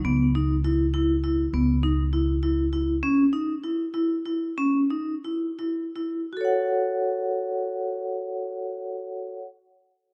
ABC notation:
X:1
M:5/8
L:1/8
Q:1/4=93
K:F#dor
V:1 name="Vibraphone"
B, D E E E | B, D E E E | C D E E E | C D E E E |
[FAcf]4- [FAcf]- | [FAcf]4- [FAcf] |]
V:2 name="Upright bass" clef=bass
C,,4- C,, | C,,4- C,, | z4 z | z4 z |
z4 z | z4 z |]